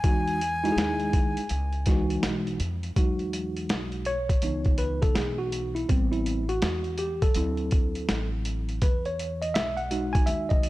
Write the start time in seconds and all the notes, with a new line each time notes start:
Already playing: G#5
0.04 E2 E3 G#3 D#4 F#4, kick, closed hi-hat
0.28 closed hi-hat
0.41 closed hi-hat
0.64 G#3 D#4 E4 F#4, closed hi-hat
0.72 G#4
0.77 D#2, snare, closed hi-hat
1.00 closed hi-hat
1.13 kick, closed hi-hat
1.37 muted upright bass stroke, closed hi-hat
1.49 C#2, closed hi-hat
1.73 closed hi-hat
1.86 E3 G#3 D#4 F#4, kick, snare, closed hi-hat
2.10 closed hi-hat
2.23 B1, snare, closed hi-hat
2.47 closed hi-hat
2.60 F2, closed hi-hat
2.83 closed hi-hat
2.96 E2 F#3 G#3 D#4 F#4, kick, closed hi-hat
3.19 closed hi-hat
3.33 closed hi-hat
3.57 closed hi-hat
3.69 B1, snare, closed hi-hat
3.92 closed hi-hat
4.05 C#5, closed hi-hat
4.29 kick, closed hi-hat
4.42 C#2 E3 B3 D#4, closed hi-hat
4.65 kick, closed hi-hat
4.78 B4, closed hi-hat
5.02 A4, kick, closed hi-hat
5.15 B1 G#4, snare, closed hi-hat
5.38 F#4
5.52 closed hi-hat
5.75 E4, closed hi-hat
5.89 A1 G3 B3 C4, kick, closed hi-hat
6.12 E4, closed hi-hat
6.26 closed hi-hat
6.49 F#4, closed hi-hat
6.62 E2, snare, closed hi-hat
6.84 closed hi-hat
6.98 G4, closed hi-hat
7.22 A4, kick, closed hi-hat
7.34 D2 F#3 C4 E4, closed hi-hat
7.57 closed hi-hat
7.71 kick, closed hi-hat
7.95 closed hi-hat
8.09 A1, snare, closed hi-hat
8.45 closed hi-hat
8.69 closed hi-hat
8.82 E2 B4, kick, closed hi-hat
9.05 C#5, closed hi-hat
9.19 closed hi-hat
9.42 D#5, closed hi-hat
9.54 B1 E5, snare, closed hi-hat
9.77 F#5, closed hi-hat
9.91 G#3 D#4 F#4, closed hi-hat
10.13 G#5, kick, closed hi-hat
10.26 D#2 E5, closed hi-hat
10.49 D#5, kick, closed hi-hat
10.63 closed hi-hat